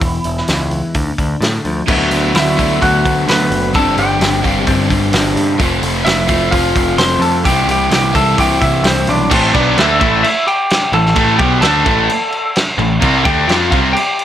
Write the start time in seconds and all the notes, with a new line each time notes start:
Already playing: E4
0.01 E1 E2, kick, open hi-hat
0.24 E1 E4, open hi-hat
0.37 snare
0.48 C#2 G#3, snare, open hi-hat
0.71 E3, open hi-hat
0.94 D2 D3, kick, open hi-hat
1.18 D2 D4, kick, open hi-hat
1.41 A2 A3, snare, open hi-hat
1.65 D2 F3, open hi-hat
1.86 D2 D3 F#3 A3 B3 D4 F#4, kick, crash
2.11 D2, open hi-hat
2.34 D2 F#3 A3 B3 E4 F#4, snare, open hi-hat
2.39 E5
2.57 D3 F#3 A3 B3 D4 F#4, kick, open hi-hat
2.61 A3
2.81 D2 D3 F#3 A3 B3 F#4 F#5, kick, open hi-hat
3.05 D2 A3 B3 F#4, kick, open hi-hat
3.27 D2 F#3 A3 B3 B4 B5, snare, open hi-hat
3.31 F#4
3.50 F#1, open hi-hat
3.73 G1 G2 D3 G3 C4 D4 A4 A5, kick, open hi-hat
3.77 C4 D4 G4
3.98 G1 G4 G5, open hi-hat
4.20 G1 G3 C4 D4 G4, snare, open hi-hat
4.42 D3 G3 C4 D4 G4, kick, open hi-hat
4.46 G2 G3 F5
4.66 G1 G2 D3 G3 C4 D4 G4, kick, open hi-hat
4.90 G1 G3 C4 D4 G4, kick, open hi-hat
5.13 G1 G3 C4 D4 G4, snare, open hi-hat
5.36 G2, open hi-hat
5.58 F1 F3 A3 C4 F4, kick, open hi-hat
5.82 F1, open hi-hat
6.05 F1 E4 E5, snare, open hi-hat
6.27 F3 A3 C4 F4, kick, open hi-hat
6.51 F1 F4 F5, kick, open hi-hat
6.76 F1, kick, open hi-hat
6.97 F1 C5 C6, snare, open hi-hat
7.19 F2 A4 A5, open hi-hat
7.44 C2 C3 E3 G3 C4 E4 G4 G5, kick, open hi-hat
7.67 C2 G4 G5, open hi-hat
7.91 C2 G4, snare, open hi-hat
7.95 G5
8.13 C3 E3 G3 C4 E4 A4 A5, kick, open hi-hat
8.38 C2 G4 G5, kick, open hi-hat
8.60 C2 E4 E5, kick, open hi-hat
8.83 C2 C4 C5, snare, open hi-hat
9.07 B1 D4 D5, open hi-hat
9.30 A1 A2 E3 A3 C4, kick, crash
9.34 C5
9.53 B1 B2 F#3 B3 D4 D5, kick, crash
9.76 D2 D3 A3 D4 E4 E5, snare, crash
10.00 A1 A2 E3 A3 E4 E5, kick, crash
10.23 E4 E5, crash
10.47 G4 G5, crash
10.70 snare, crash
10.92 A1 A2 E3 A4 A5, crash
11.06 snare
11.15 A1 A2 E3 A3, kick, crash
11.37 B1 B2 F#3 B3 G4 G5, kick, crash
11.61 D2 D3 A3 D4 A4 A5, snare, crash
11.85 A1 A2 E3 A3, kick, crash
12.10 crash
12.32 crash
12.56 snare, crash
12.78 A1 A2 E3, crash
13.01 C2 C3 G3 C4, kick, crash
13.25 D2 D3 A3 D4 G4 G5, kick, crash
13.47 F2 F3 C4 F4 G4 G5, snare, crash
13.70 C2 C3 G3 C4 F4 F5, kick, crash
13.93 G4 G5, crash
14.19 crash